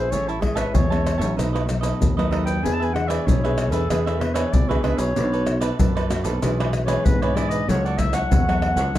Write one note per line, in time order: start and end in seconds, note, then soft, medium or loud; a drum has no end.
0.00 0.12 A#1 medium
0.00 0.10 G#4 soft
0.00 0.12 C5 medium
0.11 0.66 A1 medium
0.11 0.72 A2 medium
0.11 0.30 G#3 medium
0.11 0.31 C#4 medium
0.11 0.31 E4 medium
0.11 0.26 G#4 medium
0.11 0.29 C#5 medium
0.11 0.27 C#5 medium
0.11 0.27 E5 medium
0.11 0.27 A5 medium
0.11 pandeiro medium
0.11 maracas medium
0.11 surdo medium
0.28 0.42 E4 medium
0.28 0.40 C#5 medium
0.28 0.40 E5 medium
0.28 0.41 A5 medium
0.28 pandeiro soft
0.28 maracas soft
0.41 0.72 G#3 medium
0.41 0.72 C#4 medium
0.41 0.73 E4 medium
0.41 0.58 G#4 medium
0.41 muted cavaquinho stroke soft
0.41 pandeiro medium
0.41 tamborim medium
0.41 surdo medium
0.55 0.76 B4 medium
0.55 0.72 C#5 medium
0.55 0.72 E5 medium
0.55 0.72 A5 medium
0.55 pandeiro medium
0.55 tamborim medium
0.55 maracas medium
0.74 1.21 E2 medium
0.74 1.35 E3 medium
0.74 0.89 G#4 medium
0.74 1.38 C#5 medium
0.74 0.89 C#5 medium
0.74 0.90 E5 medium
0.74 0.89 A5 medium
0.74 pandeiro medium
0.74 maracas medium
0.74 surdo loud
0.90 1.17 G#3 medium
0.90 1.18 C#4 medium
0.90 1.18 E4 medium
0.90 1.18 C#5 medium
0.90 1.18 E5 medium
0.90 1.17 A5 medium
0.90 pandeiro soft
0.90 tamborim medium
0.90 maracas soft
1.07 pandeiro medium
1.07 tamborim medium
1.07 maracas medium
1.18 1.34 A1 medium
1.18 1.63 F#3 medium
1.18 1.63 A3 medium
1.18 1.64 D#4 medium
1.18 1.35 C#5 medium
1.18 1.35 E5 medium
1.18 1.35 A5 medium
1.18 pandeiro medium
1.18 maracas medium
1.37 1.92 B1 medium
1.37 1.98 B2 medium
1.37 1.52 D#4 soft
1.37 1.52 A4 medium
1.37 1.52 B4 medium
1.37 1.52 D#5 medium
1.37 pandeiro medium
1.37 tamborim medium
1.37 maracas medium
1.37 surdo medium
1.53 1.66 A4 medium
1.53 1.66 B4 medium
1.53 1.66 D#5 medium
1.53 pandeiro soft
1.53 tamborim medium
1.53 maracas soft
1.67 2.11 F#3 medium
1.67 2.12 A3 medium
1.67 2.12 D#4 medium
1.67 muted cavaquinho stroke soft
1.67 pandeiro medium
1.67 tamborim medium
1.67 maracas medium
1.81 2.14 A4 medium
1.81 2.14 B4 medium
1.81 2.13 D#5 medium
1.81 pandeiro medium
1.81 tamborim medium
1.81 maracas medium
2.01 2.64 D#2 medium
2.01 2.61 F#2 medium
2.01 pandeiro medium
2.01 maracas medium
2.01 surdo medium
2.17 2.60 F#3 medium
2.17 2.60 A3 medium
2.17 2.60 D#4 medium
2.17 2.30 A4 medium
2.17 2.31 B4 medium
2.17 2.31 D#5 medium
2.17 pandeiro soft
2.17 tamborim medium
2.17 maracas soft
2.31 2.46 D#4 medium
2.31 2.45 A4 medium
2.31 2.44 B4 medium
2.31 2.44 D#5 medium
2.31 pandeiro medium
2.31 tamborim medium
2.45 2.62 A4 soft
2.45 2.62 B4 soft
2.45 2.61 D#5 soft
2.45 2.65 G5 medium
2.45 pandeiro medium
2.45 maracas medium
2.63 3.18 E2 loud
2.63 3.24 E3 medium
2.63 2.91 B3 medium
2.63 2.78 D4 medium
2.63 2.91 D4 medium
2.63 2.78 G#4 medium
2.63 2.91 G#4 medium
2.63 2.79 B4 medium
2.63 2.79 E5 medium
2.63 2.75 G#5 medium
2.63 pandeiro medium
2.63 maracas medium
2.63 surdo medium
2.73 2.86 A5 loud
2.80 2.93 G#4 medium
2.80 2.93 B4 medium
2.80 2.93 E5 medium
2.80 pandeiro soft
2.80 maracas soft
2.84 2.95 G#5 medium
2.93 3.25 B3 medium
2.93 3.25 D4 medium
2.93 3.25 G#4 medium
2.93 3.10 F#5 medium
2.93 muted cavaquinho stroke soft
2.93 pandeiro medium
2.93 tamborim medium
3.08 3.25 G#4 medium
3.08 3.25 B4 medium
3.08 3.27 D5 medium
3.08 3.24 E5 medium
3.08 pandeiro medium
3.08 tamborim medium
3.08 maracas medium
3.26 3.72 B1 medium
3.26 3.87 B2 medium
3.26 3.41 D4 soft
3.26 3.42 G#4 medium
3.26 3.42 B4 medium
3.26 3.72 C#5 medium
3.26 3.42 E5 medium
3.26 pandeiro medium
3.26 maracas medium
3.26 surdo loud
3.44 3.70 B3 medium
3.44 3.70 D4 medium
3.44 3.71 G#4 medium
3.44 3.72 G#4 medium
3.44 3.71 B4 medium
3.44 3.70 E5 medium
3.44 pandeiro soft
3.44 tamborim medium
3.44 maracas soft
3.58 pandeiro medium
3.58 tamborim medium
3.58 maracas medium
3.70 3.87 E2 medium
3.70 3.84 B3 medium
3.70 3.84 D4 medium
3.70 3.84 G#4 medium
3.70 3.89 G#4 medium
3.70 3.91 A4 medium
3.70 3.88 B4 medium
3.70 3.88 E5 medium
3.70 pandeiro medium
3.70 maracas medium
3.89 4.44 E2 medium
3.89 4.51 E3 medium
3.89 4.17 B3 medium
3.89 4.05 D4 soft
3.89 4.17 D4 medium
3.89 4.07 G#4 medium
3.89 4.05 G#4 medium
3.89 4.17 G#4 medium
3.89 4.05 B4 medium
3.89 4.05 E5 medium
3.89 pandeiro medium
3.89 tamborim medium
3.89 maracas medium
3.89 surdo medium
4.05 4.20 G#4 soft
4.05 4.21 A4 medium
4.05 4.20 B4 medium
4.05 4.20 E5 medium
4.05 pandeiro soft
4.05 tamborim medium
4.05 maracas soft
4.20 4.64 B3 medium
4.20 4.64 D4 medium
4.20 4.64 G#4 medium
4.20 4.35 B4 medium
4.20 muted cavaquinho stroke soft
4.20 pandeiro medium
4.20 tamborim medium
4.34 4.67 G#4 medium
4.34 4.67 B4 medium
4.34 4.54 C#5 medium
4.34 4.66 E5 medium
4.34 pandeiro medium
4.34 tamborim medium
4.34 maracas medium
4.53 4.83 C#2 medium
4.53 5.13 B2 medium
4.53 4.70 D5 loud
4.53 pandeiro medium
4.53 maracas medium
4.53 surdo loud
4.68 5.12 B3 medium
4.68 5.12 D4 medium
4.68 4.84 F#4 medium
4.68 4.82 G#4 medium
4.68 5.12 G#4 medium
4.68 4.83 B4 medium
4.68 4.83 E5 medium
4.68 pandeiro soft
4.68 tamborim medium
4.68 maracas soft
4.82 4.98 C#2 medium
4.82 4.99 D4 medium
4.82 4.97 G#4 medium
4.82 4.99 B4 medium
4.82 4.96 B4 medium
4.82 4.96 E5 medium
4.82 pandeiro medium
4.82 tamborim medium
4.97 5.16 B1 medium
4.97 5.14 G#4 soft
4.97 5.14 B4 soft
4.97 5.62 C#5 medium
4.97 5.13 E5 soft
4.97 pandeiro medium
4.97 maracas medium
5.15 5.70 B1 medium
5.15 5.76 B2 medium
5.15 5.43 A3 medium
5.15 5.31 D4 soft
5.15 5.43 D4 medium
5.15 5.43 F#4 medium
5.15 5.31 A4 medium
5.15 5.31 B4 medium
5.15 5.31 D5 medium
5.15 pandeiro medium
5.15 maracas medium
5.15 surdo medium
5.32 5.46 A4 medium
5.32 5.46 B4 medium
5.32 5.46 D5 medium
5.32 pandeiro soft
5.32 maracas soft
5.46 6.05 A3 medium
5.46 6.05 D4 medium
5.46 6.06 F#4 medium
5.46 muted cavaquinho stroke soft
5.46 pandeiro medium
5.46 tamborim medium
5.46 maracas medium
5.60 5.77 A4 medium
5.60 5.77 B4 medium
5.60 5.77 D5 medium
5.60 pandeiro medium
5.60 tamborim medium
5.60 maracas medium
5.79 6.26 F#2 medium
5.79 6.40 F#2 medium
5.79 5.94 D4 soft
5.79 5.94 A4 medium
5.79 5.94 B4 medium
5.79 5.94 D5 medium
5.79 pandeiro medium
5.79 maracas medium
5.79 surdo loud
5.95 6.24 A4 medium
5.95 6.23 B4 medium
5.95 6.22 D5 medium
5.95 pandeiro soft
5.95 tamborim medium
5.95 maracas soft
6.09 6.29 A3 medium
6.09 6.29 D4 soft
6.09 6.29 F#4 medium
6.09 pandeiro medium
6.09 tamborim medium
6.09 maracas medium
6.24 6.39 B1 medium
6.24 6.41 A4 medium
6.24 6.40 B4 medium
6.24 6.40 D5 medium
6.24 pandeiro medium
6.24 maracas medium
6.42 6.96 B1 medium
6.42 7.02 B2 medium
6.42 6.85 E3 medium
6.42 6.85 G#3 medium
6.42 6.85 D4 medium
6.42 6.57 E4 soft
6.42 6.57 G#4 medium
6.42 6.58 B4 medium
6.42 6.58 D5 medium
6.42 pandeiro medium
6.42 tamborim medium
6.42 maracas medium
6.42 surdo medium
6.60 6.72 G#4 medium
6.60 6.72 B4 soft
6.60 6.72 D5 medium
6.60 pandeiro soft
6.60 tamborim medium
6.60 maracas soft
6.72 muted cavaquinho stroke soft
6.72 pandeiro medium
6.72 tamborim medium
6.72 maracas medium
6.85 7.30 E3 medium
6.85 7.31 G#3 medium
6.85 7.31 D4 medium
6.85 7.19 G#4 medium
6.85 7.19 B4 medium
6.85 7.06 C#5 medium
6.85 7.19 D5 medium
6.85 pandeiro medium
6.85 tamborim medium
6.85 maracas medium
7.05 7.70 G#2 medium
7.05 7.66 B2 medium
7.05 7.23 B4 medium
7.05 pandeiro medium
7.05 maracas medium
7.05 surdo loud
7.22 7.36 G#4 medium
7.22 7.36 B4 medium
7.22 7.37 C#5 medium
7.22 7.36 D5 medium
7.22 pandeiro soft
7.22 tamborim medium
7.22 maracas soft
7.34 7.62 E3 medium
7.34 7.63 G#3 medium
7.34 7.63 D4 medium
7.34 7.51 E4 medium
7.34 7.51 G#4 medium
7.34 7.50 B4 medium
7.34 7.50 D5 medium
7.34 7.49 D5 medium
7.34 pandeiro medium
7.34 tamborim medium
7.34 maracas medium
7.49 7.67 G#4 soft
7.49 7.67 B4 soft
7.49 7.66 D5 soft
7.49 7.70 D#5 loud
7.49 pandeiro medium
7.49 maracas medium
7.67 8.22 C#2 medium
7.67 8.28 C#3 medium
7.67 7.95 F#3 medium
7.67 7.95 A3 medium
7.67 7.95 E4 medium
7.67 7.84 F#4 medium
7.67 7.84 A4 medium
7.67 7.87 C#5 medium
7.67 7.84 C#5 medium
7.67 7.84 F#5 medium
7.67 pandeiro medium
7.67 maracas medium
7.67 surdo medium
7.85 7.98 A4 medium
7.85 7.99 C#5 medium
7.85 7.99 D5 medium
7.85 7.99 F#5 medium
7.85 pandeiro soft
7.85 maracas soft
7.98 8.41 F#3 medium
7.98 8.42 A3 medium
7.98 8.42 E4 medium
7.98 8.15 E5 loud
7.98 muted cavaquinho stroke soft
7.98 pandeiro medium
7.98 tamborim medium
7.98 maracas medium
7.98 surdo medium
8.13 8.30 A4 medium
8.13 8.30 C#5 medium
8.13 8.29 F#5 medium
8.13 8.98 F#5 medium
8.13 pandeiro medium
8.13 tamborim medium
8.13 maracas medium
8.30 8.77 E2 medium
8.30 8.91 C#3 medium
8.30 8.46 F#4 soft
8.30 8.47 A4 medium
8.30 8.47 C#5 medium
8.30 8.47 F#5 medium
8.30 pandeiro medium
8.30 maracas medium
8.30 surdo loud
8.47 8.90 F#3 medium
8.47 8.90 A3 medium
8.47 8.91 E4 medium
8.47 8.77 A4 medium
8.47 8.76 C#5 medium
8.47 8.75 F#5 medium
8.47 pandeiro soft
8.47 tamborim medium
8.47 maracas soft
8.62 pandeiro medium
8.62 tamborim medium
8.76 8.91 C#2 medium
8.76 8.93 A4 medium
8.76 8.93 C#5 medium
8.76 8.92 F#5 medium
8.76 pandeiro medium
8.76 maracas medium
8.94 8.98 D2 medium
8.94 8.98 D3 medium
8.94 8.98 F#3 medium
8.94 8.98 C#4 medium
8.94 8.98 D4 medium
8.94 8.98 E4 medium
8.94 pandeiro medium
8.94 tamborim medium
8.94 maracas medium
8.94 surdo medium